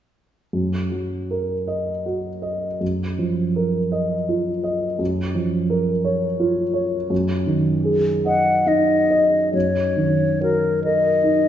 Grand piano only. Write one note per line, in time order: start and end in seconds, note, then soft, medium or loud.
0.53 2.77 F#2 soft
0.92 1.53 F#3 soft
1.31 1.91 A#4 soft
1.67 2.28 D#5 soft
2.06 2.66 F#4 soft
2.42 2.81 D#5 soft
2.81 4.96 F#2 soft
3.19 3.79 F3 soft
3.56 4.15 A#4 soft
3.92 4.50 D#5 soft
4.29 4.86 F4 soft
4.64 4.99 D#5 soft
4.99 7.06 F#2 soft
5.35 5.91 F3 soft
5.70 6.26 A#4 soft
6.05 6.61 C#5 soft
6.40 6.96 F4 soft
6.74 7.10 C#5 soft
7.10 9.50 F#2 soft
7.47 8.10 D#3 soft
7.84 8.50 G#4 soft
8.26 8.94 D#5 soft
8.66 9.37 D#4 soft
9.11 9.54 D#5 soft
9.54 11.48 F#2 soft
9.97 10.68 D#3 soft
10.42 11.08 F#4 soft
10.86 11.47 A#4 soft
11.23 11.48 D#4 soft